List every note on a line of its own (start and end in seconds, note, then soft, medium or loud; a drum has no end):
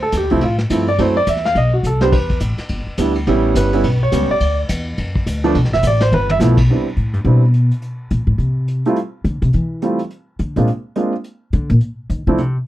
0.00 0.12 D2 medium
0.00 0.13 A4 medium
0.12 0.22 E2 medium
0.12 kick soft
0.12 hi-hat pedal medium
0.12 ride medium
0.17 0.32 G4 medium
0.22 0.32 D2 medium
0.30 0.41 C2 medium
0.30 0.41 F3 medium
0.30 0.41 A3 medium
0.30 0.41 C4 medium
0.30 0.42 E4 medium
0.30 ride soft
0.41 0.69 A2 medium
0.41 0.53 F4 medium
0.41 kick soft
0.41 ride medium
0.58 snare medium
0.70 0.98 G2 medium
0.70 0.86 F3 medium
0.70 0.86 A3 medium
0.70 0.86 C4 medium
0.70 0.86 E4 medium
0.70 kick soft
0.70 hi-hat pedal medium
0.70 ride medium
0.87 0.99 D5 medium
0.87 ride soft
0.98 1.26 F#2 medium
0.98 1.14 F#3 medium
0.98 1.15 A3 medium
0.98 1.15 C4 medium
0.98 1.15 E4 medium
0.98 1.17 C5 medium
0.98 kick soft
0.98 ride medium
1.17 1.27 D5 loud
1.27 1.55 E2 medium
1.27 1.45 E5 medium
1.27 kick soft
1.27 hi-hat pedal medium
1.27 ride medium
1.36 snare soft
1.45 1.56 F5 loud
1.45 snare soft
1.55 1.83 B1 medium
1.55 1.73 D#5 medium
1.55 kick soft
1.55 ride medium
1.73 1.84 F#4 medium
1.83 2.11 C2 medium
1.83 2.02 A4 medium
1.83 hi-hat pedal soft
2.01 2.11 G3 medium
2.01 2.12 B3 medium
2.01 2.12 D4 medium
2.01 2.13 G4 medium
2.01 2.12 C5 medium
2.01 snare medium
2.12 2.40 E2 medium
2.12 2.39 B4 medium
2.12 kick medium
2.12 crash medium
2.29 kick medium
2.29 ride soft
2.40 2.57 A1 medium
2.40 kick soft
2.40 hi-hat pedal medium
2.40 ride medium
2.57 muted upright bass stroke soft
2.57 snare soft
2.57 ride soft
2.69 2.86 G1 medium
2.69 kick soft
2.69 ride medium
2.87 muted upright bass stroke soft
2.97 3.26 D2 medium
2.97 3.14 G3 medium
2.97 3.14 B3 medium
2.97 3.14 D4 medium
2.97 3.15 E4 medium
2.97 kick soft
2.97 hi-hat pedal medium
2.97 ride medium
3.15 ride soft
3.27 3.55 A1 medium
3.27 3.69 G3 medium
3.27 3.70 B3 medium
3.27 3.70 C#4 medium
3.27 3.70 E4 medium
3.27 kick soft
3.27 ride medium
3.55 3.83 G1 medium
3.55 3.99 B4 medium
3.55 kick soft
3.55 hi-hat pedal medium
3.55 ride medium
3.73 3.83 G3 medium
3.73 3.83 B3 medium
3.73 3.83 C#4 medium
3.73 3.84 E4 medium
3.73 ride medium
3.84 4.12 B1 medium
3.84 kick soft
3.84 ride medium
4.03 4.29 C#5 medium
4.12 4.28 C#2 medium
4.12 4.28 G3 medium
4.12 4.28 B3 medium
4.12 4.28 C#4 medium
4.12 4.28 G4 medium
4.12 kick soft
4.12 hi-hat pedal medium
4.12 ride medium
4.30 4.57 D5 medium
4.30 muted upright bass stroke soft
4.40 4.68 D2 medium
4.40 kick soft
4.40 ride medium
4.69 4.97 E2 medium
4.69 kick soft
4.69 hi-hat pedal medium
4.69 ride medium
4.97 5.26 F#2 medium
4.97 kick soft
4.97 ride medium
5.16 kick medium
5.26 5.54 D2 medium
5.26 kick soft
5.26 hi-hat pedal medium
5.26 ride medium
5.44 5.54 F3 medium
5.44 5.54 A3 medium
5.44 5.54 B3 medium
5.44 5.55 D4 medium
5.44 ride medium
5.55 5.64 B1 medium
5.55 kick soft
5.55 ride medium
5.64 5.74 A1 medium
5.64 snare soft
5.73 5.83 F1 medium
5.73 5.84 E5 loud
5.73 snare soft
5.83 6.11 A1 loud
5.83 kick soft
5.83 hi-hat pedal medium
5.83 ride medium
5.87 6.02 D5 medium
6.00 6.12 C5 medium
6.00 snare medium
6.00 ride soft
6.12 6.39 G1 medium
6.12 6.30 B4 medium
6.12 high tom soft
6.29 6.37 E5 loud
6.29 high tom medium
6.40 6.68 B1 medium
6.40 6.56 F3 medium
6.40 6.56 A3 medium
6.40 6.56 B3 medium
6.40 6.57 E4 medium
6.40 snare medium
6.40 hi-hat pedal medium
6.57 kick medium
6.57 crash medium
6.70 6.85 G3 soft
6.70 6.85 B3 soft
6.70 6.85 C4 soft
6.70 6.86 D4 soft
6.70 6.86 E4 soft
6.96 7.13 A2 medium
6.96 closed hi-hat soft
7.13 7.24 G2 medium
7.13 closed hi-hat soft
7.25 7.68 B2 medium
7.25 7.41 G3 medium
7.25 7.41 B3 soft
7.25 7.41 C4 soft
7.25 7.42 D4 soft
7.25 7.42 E4 soft
7.25 closed hi-hat soft
7.54 closed hi-hat soft
7.71 closed hi-hat soft
7.82 closed hi-hat soft
8.11 8.26 A#2 medium
8.11 closed hi-hat soft
8.27 8.38 A2 medium
8.38 8.82 C3 medium
8.38 closed hi-hat soft
8.68 closed hi-hat soft
8.85 8.96 G3 medium
8.85 8.96 A3 medium
8.85 8.96 C4 medium
8.85 8.96 E4 medium
8.85 8.97 F4 medium
8.85 closed hi-hat soft
8.96 closed hi-hat soft
9.24 9.41 D3 medium
9.24 closed hi-hat medium
9.42 9.53 C3 medium
9.42 closed hi-hat soft
9.53 9.97 E3 medium
9.53 closed hi-hat soft
9.82 9.98 G3 medium
9.82 9.98 A3 medium
9.82 9.98 C4 soft
9.82 9.99 E4 soft
9.82 9.99 F4 medium
9.82 closed hi-hat soft
9.99 closed hi-hat soft
10.10 closed hi-hat soft
10.39 10.56 D3 medium
10.39 closed hi-hat medium
10.56 10.67 A#2 medium
10.56 10.67 G#3 medium
10.56 10.67 A#3 soft
10.56 10.67 C4 medium
10.56 10.67 D4 soft
10.56 10.68 F4 medium
10.56 closed hi-hat soft
10.67 closed hi-hat soft
10.96 11.12 G#3 medium
10.96 11.12 A#3 soft
10.96 11.12 C4 soft
10.96 11.12 D4 soft
10.96 11.13 F4 medium
10.96 closed hi-hat medium
11.24 closed hi-hat soft
11.53 11.69 D3 medium
11.53 closed hi-hat soft
11.69 11.77 A#2 loud
11.69 closed hi-hat soft
11.81 closed hi-hat soft
12.10 12.27 D#3 medium
12.10 closed hi-hat medium
12.27 12.38 D3 medium
12.27 12.38 F3 medium
12.27 12.38 A3 medium
12.27 12.38 C4 medium
12.27 12.38 D4 medium
12.27 12.38 E4 medium
12.38 12.55 C3 medium
12.38 closed hi-hat soft